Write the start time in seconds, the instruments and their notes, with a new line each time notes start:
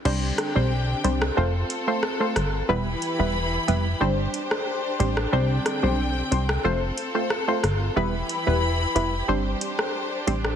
0.05 analog synth bass C2, string section D3 C4 D4 G4 G5, synth stab G3 C4 D4 C5, crash
0.38 cross-stick, closed hi-hat
0.55 analog synth bass B1, synth stab G3 C4 D4 C5
1.04 analog synth bass C2, synth stab G3 C4 D4 C5, closed hi-hat
1.22 cross-stick
1.37 analog synth bass F1, synth stab A3 C4 F4 C5, string section F4 A4
1.70 closed hi-hat
1.87 synth stab A3 C4 F4 C5
2.03 cross-stick
2.20 synth stab A3 C4 F4 C5
2.36 analog synth bass G1, cross-stick, closed hi-hat
2.69 analog synth bass E1, string section E3 E4 G4 B4 B5, synth stab G3 B3 E4 B4
3.02 closed hi-hat
3.19 analog synth bass E1, synth stab G3 B3 E4 B4
3.68 analog synth bass F1, synth stab G3 B3 E4 B4, closed hi-hat
4.01 analog synth bass G1, synth stab G3 C4 D4 C5, string section D4 C5
4.34 closed hi-hat
4.51 cross-stick
5.00 analog synth bass A1, synth stab G3 C4 D4 C5, closed hi-hat
5.17 cross-stick
5.32 analog synth bass C2, string section D3 C4 G5, synth stab G3 C4 D4 C5
5.66 cross-stick, closed hi-hat
5.83 analog synth bass B1, synth stab G3 C4 D4 C5
6.31 analog synth bass C2, synth stab G3 C4 D4 C5, closed hi-hat
6.49 cross-stick
6.64 analog synth bass F1, synth stab A3 C4 F4 C5, string section F4 A4
6.98 closed hi-hat
7.15 synth stab A3 C4 F4 C5
7.30 cross-stick
7.48 synth stab A3 C4 F4 C5
7.64 analog synth bass G1, cross-stick, closed hi-hat
7.96 analog synth bass E1, string section E3 E4 G4 B4 B5, synth stab G3 B3 E4 B4
8.29 closed hi-hat
8.47 analog synth bass E1, synth stab G3 B3 E4 B4
8.95 analog synth bass F1, synth stab G3 B3 E4 B4, closed hi-hat
9.28 analog synth bass G1, synth stab G3 C4 D4 C5, string section D4 C5
9.61 closed hi-hat
9.79 cross-stick
10.27 analog synth bass A1, synth stab G3 C4 D4 C5, closed hi-hat
10.45 cross-stick